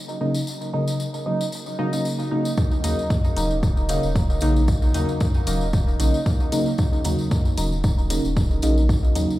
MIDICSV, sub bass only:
0, 0, Header, 1, 2, 480
1, 0, Start_track
1, 0, Key_signature, -6, "minor"
1, 0, Tempo, 526316
1, 430, Time_signature, 4, 2, 24, 8
1, 8566, End_track
2, 0, Start_track
2, 0, Title_t, "Sub bass"
2, 0, Program_c, 0, 38
2, 2589, Note_on_c, 0, 39, 96
2, 2690, Note_off_c, 0, 39, 0
2, 2829, Note_on_c, 0, 42, 98
2, 3019, Note_off_c, 0, 42, 0
2, 3070, Note_on_c, 0, 27, 85
2, 3632, Note_off_c, 0, 27, 0
2, 3680, Note_on_c, 0, 27, 98
2, 3989, Note_off_c, 0, 27, 0
2, 4029, Note_on_c, 0, 34, 81
2, 4469, Note_off_c, 0, 34, 0
2, 4509, Note_on_c, 0, 39, 98
2, 4610, Note_off_c, 0, 39, 0
2, 4749, Note_on_c, 0, 42, 101
2, 4939, Note_off_c, 0, 42, 0
2, 4988, Note_on_c, 0, 27, 85
2, 5429, Note_off_c, 0, 27, 0
2, 5469, Note_on_c, 0, 34, 105
2, 5570, Note_off_c, 0, 34, 0
2, 6429, Note_on_c, 0, 39, 98
2, 6530, Note_off_c, 0, 39, 0
2, 6669, Note_on_c, 0, 42, 98
2, 6859, Note_off_c, 0, 42, 0
2, 6909, Note_on_c, 0, 27, 83
2, 7472, Note_off_c, 0, 27, 0
2, 7520, Note_on_c, 0, 27, 98
2, 7829, Note_off_c, 0, 27, 0
2, 7869, Note_on_c, 0, 34, 83
2, 8309, Note_off_c, 0, 34, 0
2, 8349, Note_on_c, 0, 39, 102
2, 8450, Note_off_c, 0, 39, 0
2, 8566, End_track
0, 0, End_of_file